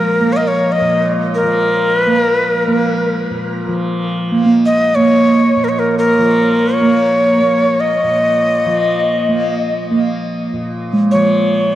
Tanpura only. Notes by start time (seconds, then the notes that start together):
Already playing: A#2 F3 A#3
0.20 A#3
0.81 A#2
1.43 F3
2.06 A#3
2.68 A#3
3.31 A#2
3.67 F3
4.32 A#3
4.97 A#3
5.56 A#2
6.18 F3
6.81 A#3
7.41 A#3
8.04 A#2
8.66 F3
9.29 A#3
9.91 A#3
10.53 A#2
11.13 F3